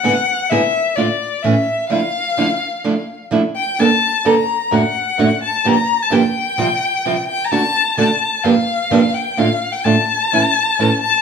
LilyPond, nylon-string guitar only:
\new Staff \with { instrumentName = "Nylon-string guitar" } { \time 4/4 \key d \minor \tempo 4 = 128 <gis, d gis b e' gis'>8 r8 <gis, d gis b e' gis'>8 r8 <a, d a d' f'>8 r8 <a, e a cis' e'>8 r8 | <d f a d' e'>8 r8 <d f a d' e'>8 r8 <d f a d' e'>8 r8 <d f a d' e'>8 r8 | <g, d g bes d' a'>8 r8 <g, d g bes d' a'>8 r8 <fis, a, d a d' fis'>8 r8 <fis, a, d a d' fis'>8 r8 | <g, d f bes d' g'>8 r8 <g, d f bes d' g'>8 r8 <c f g c' f'>8 r8 <c f g c' f'>8 r8 |
<d a d' fis'>8 r8 <d a d' fis'>8 r8 <g, d f bes d' g'>8 r8 <g, d f bes d' g'>8 r8 | <a, d a d' f'>8 r8 <a, d a d' f'>8 r8 <a, e a cis' e'>8 r8 <a, e a cis' e'>8 r8 | }